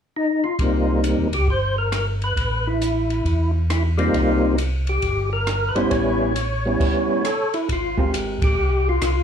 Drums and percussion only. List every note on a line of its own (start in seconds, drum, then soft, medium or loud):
0.59 kick soft
0.59 ride soft
1.04 hi-hat pedal soft
1.04 ride soft
1.33 ride soft
1.48 kick soft
1.92 cross-stick soft
1.92 hi-hat pedal soft
1.92 ride soft
2.22 ride soft
2.37 kick soft
2.37 ride soft
2.82 hi-hat pedal soft
2.82 ride soft
3.10 ride soft
3.25 kick soft
3.25 ride soft
3.70 cross-stick soft
3.70 hi-hat pedal soft
3.70 ride soft
3.99 ride soft
4.14 kick soft
4.14 ride soft
4.58 hi-hat pedal soft
4.58 ride medium
4.87 ride soft
5.02 kick soft
5.02 ride soft
5.47 cross-stick medium
5.47 hi-hat pedal soft
5.47 ride soft
5.76 ride soft
5.91 kick soft
5.91 ride soft
6.36 hi-hat pedal soft
6.36 ride soft
6.80 kick medium
6.80 crash medium
6.80 ride soft
7.25 cross-stick soft
7.25 hi-hat pedal soft
7.25 ride soft
7.54 ride soft
7.69 kick soft
7.69 ride soft
7.98 kick soft
8.14 hi-hat pedal soft
8.14 ride medium
8.42 kick medium
8.42 ride medium
9.02 cross-stick medium
9.02 hi-hat pedal soft
9.02 ride medium